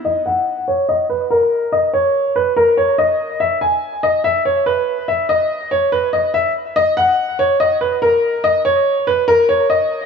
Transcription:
X:1
M:4/4
L:1/8
Q:1/4=143
K:Ebphr
V:1 name="Upright piano"
e g2 d e c B2 | e d2 c B d e2 | f a2 e f d c2 | f e2 d c e f z |
e g2 d e c B2 | e d2 c B d e2 |]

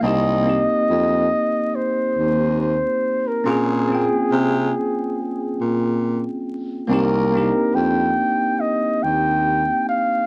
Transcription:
X:1
M:4/4
L:1/16
Q:"Swing 16ths" 1/4=70
K:Cphr
V:1 name="Muted trumpet"
e8 c4 c3 B | A12 z4 | B4 g4 e2 g4 f2 |]
V:2 name="Tine electric piano"
[B,CEG]2 [B,CEG]8 z6 | [CDFA]2 [B,CFg]8 z6 | [B,CEG]2 [B,C=DEG]8 z6 |]
V:3 name="Baritone saxophone" clef=bass
C,,3 z F,,2 z4 E,,3 z3 | B,,3 z C,2 z4 B,,3 z3 | C,,3 z F,,2 z4 E,,3 z3 |]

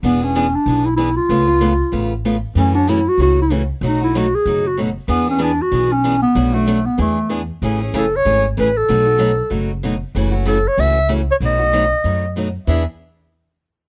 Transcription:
X:1
M:4/4
L:1/8
Q:"Swing" 1/4=190
K:Bdor
V:1 name="Clarinet"
B, C2 D2 E E =F- | =F6 z2 | C D E F F E z2 | ^D E F G2 F z2 |
B, C D F2 C2 B,- | B, A,2 B, A,3 z | z2 A c2 z B A- | A4- A z3 |
z2 A c e2 z c | ^d6 z2 | e z6 z |]
V:2 name="Steel-string acoustic guitar"
[E,B,DG] [B,DG] [E,B,DG] z [E,B,DG] z [E,B,DG] z | [C,A,B,^EB] [B,EB] [C,A,B,EB] z [C,A,B,EB] z [C,A,B,EB] z | [C,E,A,CF] [A,CF] [C,E,A,CF] z [C,E,A,CF] z [C,E,A,CF] z | [B,,F,A,^DF] [A,DF] [B,,F,A,DF] z [B,,F,A,DF] z [B,,F,A,DF] z |
[E,B,DG] [B,DG] [E,B,DG] z [E,B,DG] z [E,B,DG] z | [B,,F,A,DF] [A,DF] [B,,F,A,DF] z [E,B,DG] z [E,B,DG] z | [C,E,A,CG] [A,CG] [C,E,A,CG] z [C,E,A,CG] z [C,E,A,CG] z | [B,,F,A,^DF] [A,DF] [B,,F,A,DF] z [B,,F,A,DF] z [B,,F,A,DF] z |
[C,E,A,CF] [A,CF] [C,E,A,CF] z [C,E,A,CF] z [C,E,A,CF] z | [B,,F,A,^DF] [A,DF] [B,,F,A,DF] z [B,,F,A,DF] z [B,,F,A,DF] z | [E,B,DG] z6 z |]
V:3 name="Upright bass" clef=bass
E,,,4 B,,,4 | C,,4 A,,,4 | F,,4 C,,4 | B,,,4 F,,,4 |
E,,4 B,,,4 | B,,,4 E,,4 | A,,,2 F,,,2 G,,,2 A,,,2 | B,,,4 F,,,4 |
F,,,4 C,,4 | B,,,4 F,,4 | E,, z6 z |]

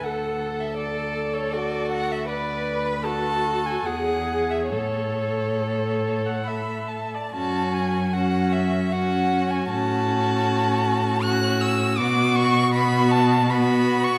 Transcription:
X:1
M:3/4
L:1/16
Q:1/4=78
K:A
V:1 name="Violin"
f3 e d3 c d2 f e | d3 b a3 g f3 e | c8 b2 a2 | [K:F#m] a2 g2 f2 e2 f3 g |
a8 f'2 e'2 | d'2 c'2 b2 a2 b3 c' |]
V:2 name="Viola"
A4 A8 | B4 F4 G4 | A4 A3 f e3 d | [K:F#m] C4 C4 C4 |
C8 C4 | B,4 B,4 B,4 |]
V:3 name="Violin"
A8 F4 | B4 A4 G4 | A8- A3 z | [K:F#m] F4 F4 F4 |
F8 F4 | F4 F4 F4 |]
V:4 name="Cello" clef=bass
D,,12- | D,,8 E,,4 | A,,8- A,,3 z | [K:F#m] F,,12 |
A,,12 | B,,12 |]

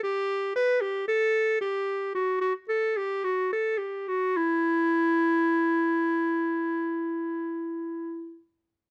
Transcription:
X:1
M:4/4
L:1/16
Q:1/4=53
K:Em
V:1 name="Clarinet"
G2 B G A2 G2 F F A G F A G F | E12- E2 z2 |]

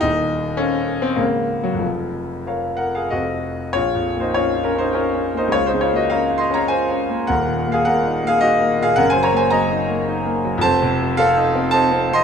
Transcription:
X:1
M:3/4
L:1/16
Q:1/4=104
K:Bbm
V:1 name="Grand piano"
E4 D3 C B,3 G, | F,6 [Bg] [Af] [Ge]4 | [Fd]3 [Ec] [Fd]2 [DB] [Ec] [DB]3 [Ec] | [Fd] [Ec] [Fd] [Ge] [Bf]2 [ec'] [db] [ca]4 |
[Bg]3 [Af] [Bg]3 [Af] [Ge]3 [Af] | [Bg] [ca] [db] [ca] [eb]2 z6 | [c=a]4 [=Af]4 [ca]3 [ec'] |]
V:2 name="Grand piano"
[E,,,E,,]4 [=Acf]4 [D,,,D,,Bdf]4 | [F,,,F,,]4 [Bdf]4 [F,,,F,,=Acf]4 | (3B,,,2 F,,2 B,2 (3D2 F2 D2 (3F2 D2 B,2 | (3D,,2 D,2 B,2 (3D2 F2 D2 (3F2 D2 B,2 |
(3[E,,,E,,]2 B,,2 B,2 (3B,,2 E2 B,2 (3E2 B,2 B,,2 | (3[G,,,G,,]2 G,2 B,2 (3G,2 E2 B,2 (3E2 B,2 G,2 | (3[F,,,F,,]2 C,2 F,2 (3C2 E2 C2 (3E2 C2 F,2 |]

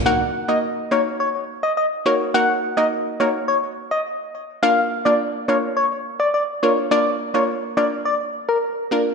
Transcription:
X:1
M:4/4
L:1/16
Q:1/4=105
K:Ebm
V:1 name="Soft synth lead"
g2 z e z2 d z d z2 e e z d z | g2 z e z2 d z d z2 e z4 | f2 z =d z2 _d z d z2 =d d z _d z | =d2 z _d z2 =d z d z2 B z4 |]
V:2 name="Synth pluck"
[B,EGB] z2 [B,EGB] z2 [B,EGB] z6 z [B,EGB]2 | [B,EGB] z2 [B,EGB] z2 [B,EGB] z8 z | [B,=DFB] z2 [B,DFB] z2 [B,DFB] z6 z [B,DFB]2 | [B,=DFB] z2 [B,DFB] z2 [B,DFB] z6 z [B,DFB]2 |]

